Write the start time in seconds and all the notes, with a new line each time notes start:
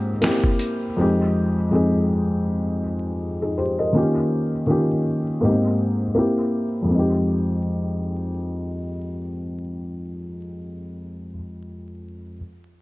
Already playing: G#2 A#3 C4 D#4 G4
0.21 A#3 C4 E4, snare, closed hi-hat
0.26 G4
0.44 kick
0.59 closed hi-hat
0.97 F2 G#3 C4 D#4
1.01 G4
1.71 F2 G#3 C4 D#4
1.75 G#4
3.42 D#4 G#4
3.58 G4 C5
3.79 A#4 D#5
3.93 D#3 A#3 C#4 F4
3.97 G4
4.67 D#3 A#3 C#4 F4 G4
5.41 G#2 A#3 B3 D#4 G4
5.49 C4
6.15 A#3 C4 E4
6.19 G4
6.83 F2 G#3
6.91 C4
6.95 D#4
6.99 G4